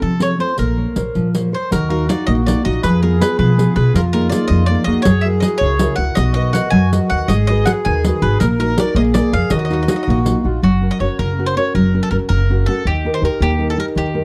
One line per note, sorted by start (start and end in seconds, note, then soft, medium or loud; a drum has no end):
0.00 0.38 C3 medium
0.00 0.38 F3 medium
0.00 0.13 C4 soft
0.00 0.13 F4 soft
0.00 0.13 A4 soft
0.00 0.22 A4 medium
0.19 0.37 C4 soft
0.19 0.38 F4 soft
0.19 0.38 A4 soft
0.19 0.40 C#5 medium
0.19 riq soft
0.38 0.54 C4 soft
0.38 0.54 F4 soft
0.38 0.54 A4 soft
0.38 0.57 C5 medium
0.57 0.83 A#1 medium
0.57 0.95 A#3 medium
0.57 1.31 A#4 medium
0.57 riq soft
0.77 0.95 A#4 soft
0.77 0.95 C5 soft
0.77 0.96 C#5 soft
0.96 1.08 A#1 medium
0.96 1.27 A#4 medium
0.96 1.27 C5 soft
0.96 1.28 C#5 soft
0.96 riq medium
1.15 1.52 A#2 medium
1.15 1.52 F3 medium
1.15 riq soft
1.34 1.51 A#4 soft
1.34 1.51 C5 soft
1.34 1.52 C#5 soft
1.34 riq soft
1.52 1.68 A#4 soft
1.52 1.68 C5 soft
1.52 1.72 C5 medium
1.52 1.68 C#5 soft
1.71 2.09 D#2 medium
1.71 2.08 D#3 medium
1.71 2.88 F#4 medium
1.71 1.89 A#4 medium
1.71 riq medium
1.90 2.08 D#4 soft
1.90 2.09 F#4 medium
1.90 2.09 A#4 medium
1.90 2.09 F5 soft
2.09 2.40 D#4 medium
2.09 2.40 F#4 soft
2.09 2.26 D5 medium
2.09 2.40 F5 soft
2.09 riq medium
2.27 2.53 A#1 medium
2.27 2.65 A#3 medium
2.27 2.32 D#5 medium
2.46 2.64 D#4 soft
2.46 2.64 F#4 soft
2.46 2.64 D5 medium
2.46 2.77 F5 soft
2.46 riq medium
2.65 2.78 A#1 medium
2.65 2.80 D#4 soft
2.65 2.80 F4 soft
2.65 2.80 F#4 medium
2.65 2.83 D#5 medium
2.83 3.20 F2 medium
2.83 3.20 F3 medium
2.83 3.99 G#4 medium
2.83 3.02 B4 medium
2.83 riq soft
3.02 3.19 B3 soft
3.02 3.19 F4 soft
3.02 3.20 G#4 soft
3.02 3.21 A#4 medium
3.20 3.51 B3 medium
3.20 3.51 F4 soft
3.20 3.51 G#4 medium
3.20 3.38 B4 medium
3.20 riq medium
3.39 3.64 B2 medium
3.39 3.76 F3 medium
3.39 3.75 B4 medium
3.57 3.76 B3 soft
3.57 3.75 F4 soft
3.57 3.75 G#4 medium
3.57 riq soft
3.76 3.89 B2 medium
3.76 3.92 B3 soft
3.76 3.91 F4 soft
3.76 3.92 G#4 medium
3.76 3.95 B4 medium
3.94 4.30 F2 medium
3.94 4.31 F3 medium
3.94 4.91 F4 loud
3.94 4.01 A#4 medium
3.94 riq medium
4.13 4.31 A#3 soft
4.13 4.32 D#4 soft
4.13 4.33 G#4 soft
4.13 4.29 A#4 medium
4.30 4.62 A#3 soft
4.30 4.63 D#4 medium
4.30 4.47 D5 medium
4.30 riq medium
4.34 4.63 G#4 medium
4.48 4.74 F2 medium
4.48 4.86 F3 medium
4.48 4.66 D#5 medium
4.66 4.86 A#3 soft
4.66 4.86 D#4 soft
4.66 4.86 G#4 soft
4.66 4.84 D5 medium
4.84 4.99 F2 medium
4.84 5.02 A#3 soft
4.84 5.02 D#4 soft
4.84 5.05 F#4 medium
4.84 5.02 G#4 medium
4.84 5.02 D#5 medium
5.02 5.42 F#2 medium
5.02 5.42 F#3 medium
5.02 5.95 G#4 loud
5.02 5.24 C#5 medium
5.02 riq medium
5.21 5.41 E4 soft
5.21 5.43 F#4 soft
5.21 5.27 E5 medium
5.26 5.42 A#4 soft
5.40 5.73 E4 soft
5.40 5.74 F#4 soft
5.40 5.74 A#4 medium
5.40 5.46 D#5 medium
5.40 riq medium
5.58 5.86 C#2 medium
5.58 5.98 C#3 medium
5.58 5.95 C#5 medium
5.79 5.97 E4 soft
5.79 5.97 F#4 soft
5.79 5.98 A#4 medium
5.79 riq medium
5.96 6.10 C#2 medium
5.96 6.13 E4 soft
5.96 6.13 F#4 soft
5.96 6.14 A#4 soft
5.96 6.16 F#5 medium
6.15 6.54 B1 medium
6.15 6.54 B3 medium
6.15 7.33 F#4 loud
6.15 6.33 D#5 medium
6.15 riq medium
6.34 6.51 A#4 soft
6.34 6.52 B4 soft
6.34 6.52 D#5 medium
6.34 6.53 D#5 soft
6.53 6.84 A#4 soft
6.53 6.84 B4 soft
6.53 6.85 D#5 medium
6.53 6.70 F#5 medium
6.53 riq medium
6.70 6.97 F#2 medium
6.70 7.09 F#3 medium
6.70 6.90 G#5 medium
6.92 7.09 A#4 soft
6.92 7.10 B4 soft
6.92 7.10 D#5 medium
6.92 riq medium
7.10 7.23 D#2 medium
7.10 7.26 A#4 soft
7.10 7.26 B4 soft
7.10 7.26 D#5 soft
7.10 7.28 F#5 medium
7.28 7.65 G#1 medium
7.28 7.66 G#3 medium
7.28 8.43 G#4 loud
7.28 7.46 D#5 medium
7.28 riq soft
7.47 7.66 F#4 soft
7.47 7.66 G#4 soft
7.47 7.67 B4 medium
7.47 7.67 D#5 medium
7.66 7.97 F#4 soft
7.66 7.97 G#4 soft
7.66 7.98 B4 medium
7.66 7.71 F#5 medium
7.66 riq medium
7.85 8.10 D#2 loud
7.85 8.22 D#3 medium
7.85 8.03 G#5 medium
8.04 8.22 F#4 medium
8.04 8.22 G#4 soft
8.04 8.22 B4 medium
8.04 riq medium
8.22 8.34 G#1 medium
8.22 8.37 F#4 soft
8.22 8.38 G#4 soft
8.22 8.39 B4 medium
8.22 8.38 B4 soft
8.40 8.77 A#1 medium
8.40 8.77 A#3 medium
8.40 8.45 A#4 medium
8.40 8.97 A#4 loud
8.40 riq medium
8.59 8.76 D#4 soft
8.59 8.77 F#4 soft
8.59 8.77 A#4 soft
8.59 8.77 A#4 medium
8.78 8.92 D#4 medium
8.78 8.93 F#4 medium
8.78 8.93 A#4 medium
8.78 8.96 D5 medium
8.78 riq medium
8.95 9.19 A#1 medium
8.95 9.32 A#3 medium
8.95 9.52 G#4 medium
8.95 9.01 D#5 medium
9.14 9.32 G#4 soft
9.14 9.32 A#4 medium
9.14 9.33 D5 medium
9.14 9.32 D5 soft
9.14 riq medium
9.33 9.45 F2 medium
9.33 9.48 G#4 soft
9.33 9.48 A#4 soft
9.33 9.48 D5 soft
9.33 9.50 F5 medium
9.50 9.87 D#2 medium
9.50 9.88 D#3 medium
9.50 10.47 F#4 loud
9.50 9.58 D#5 medium
9.50 riq medium
9.59 9.64 D#5 soft
9.65 9.72 D#5 medium
9.70 9.87 D#4 medium
9.70 9.87 F#4 medium
9.70 9.81 D#5 soft
9.70 9.88 F5 soft
9.70 riq soft
9.83 9.88 D#5 medium
9.88 10.18 D#4 soft
9.88 10.19 F#4 medium
9.88 9.95 D#5 soft
9.88 10.19 F5 medium
9.88 riq medium
9.96 10.02 D#5 soft
10.03 10.09 D#5 medium
10.07 10.32 A#1 medium
10.07 10.44 A#3 medium
10.07 10.18 D#5 medium
10.24 10.43 D#4 soft
10.24 10.43 F4 soft
10.24 10.44 F#4 medium
10.24 riq medium
10.44 10.57 A#1 medium
10.44 10.59 D#4 soft
10.44 10.59 F4 soft
10.44 10.62 F4 medium
10.44 10.59 F#4 medium
10.62 10.88 F#1 medium
10.62 10.99 F#3 medium
10.62 10.93 F#4 medium
10.82 11.00 C#4 soft
10.82 11.00 F#4 soft
10.82 11.00 A#4 soft
10.91 11.00 D#5 medium
11.00 11.06 F#1 medium
11.00 11.31 C#4 soft
11.00 11.31 F#4 soft
11.00 11.31 A#4 soft
11.00 11.17 C#5 medium
11.19 11.55 F#1 medium
11.19 11.55 C#3 medium
11.19 11.46 A#4 medium
11.38 11.55 C#4 soft
11.38 11.56 F#4 soft
11.38 11.57 A#4 soft
11.46 11.55 C5 medium
11.56 11.86 C#4 soft
11.56 11.87 F#4 soft
11.56 11.87 A#4 soft
11.56 11.74 C#5 medium
11.75 11.99 F#1 medium
11.75 12.11 F#3 medium
11.75 12.01 A#4 medium
11.94 12.11 C#4 soft
11.94 12.12 F#4 soft
11.94 12.11 A#4 soft
12.03 12.10 A4 medium
12.11 12.17 F#1 medium
12.11 12.41 C#4 soft
12.11 12.42 F#4 medium
12.11 12.16 A#4 medium
12.11 12.42 A#4 medium
12.29 12.66 F#1 loud
12.29 12.67 C#3 medium
12.29 12.66 A#4 medium
12.50 12.67 C#4 medium
12.50 12.67 F#4 soft
12.50 12.68 A#4 medium
12.66 12.82 C#4 medium
12.66 12.82 F#4 soft
12.66 12.85 A4 medium
12.66 12.83 A#4 medium
12.85 13.09 D#2 medium
12.85 13.22 D#3 soft
12.85 13.15 G4 medium
13.05 13.21 D#4 soft
13.05 13.22 G4 soft
13.05 13.22 A#4 medium
13.14 13.22 C5 medium
13.22 13.28 D#2 medium
13.22 13.52 D#4 soft
13.22 13.52 G4 soft
13.22 13.52 A#4 medium
13.22 13.40 A#4 medium
13.40 13.76 D#2 loud
13.40 13.76 A#3 medium
13.40 13.67 G4 medium
13.59 13.76 D#4 soft
13.59 13.77 G4 soft
13.59 13.77 A#4 medium
13.70 13.77 A4 medium
13.77 14.07 D#4 soft
13.77 14.08 G4 soft
13.77 14.08 A#4 medium
13.77 13.85 A#4 medium
13.95 14.20 D#2 medium
13.95 14.24 D#3 medium
13.95 14.23 G4 medium
14.14 14.24 D#4 soft
14.14 14.24 G4 soft
14.14 14.24 A#4 soft